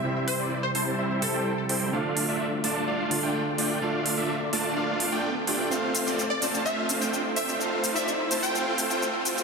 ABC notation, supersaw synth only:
X:1
M:4/4
L:1/16
Q:1/4=127
K:Ddor
V:1 name="Supersaw synth"
[G,CEce]3 [G,CEcd] z2 [G,CEca]2 [G,CEce]3 [G,CEcg] z2 [G,CEcg]2 | [A,DFdf]3 [A,DFde] z2 [A,DFda]2 [A,DFdf]3 [A,DFdg] z2 [A,DFdg]2 | [A,DFdf]3 [A,DFde] z2 [A,DFda]2 [A,DFdf]3 [A,DFdg] z2 [A,DFdg]2 | [A,CFcf]3 [A,CFcd] z2 [A,CFca]2 [A,CFcf]3 [A,CFcg] z2 [A,CFcg]2 |
[A,CFcf]3 [A,CFcd] z2 [A,CFca]2 [A,CFcf]3 [A,CFcg] z2 [A,CFcg]2 |]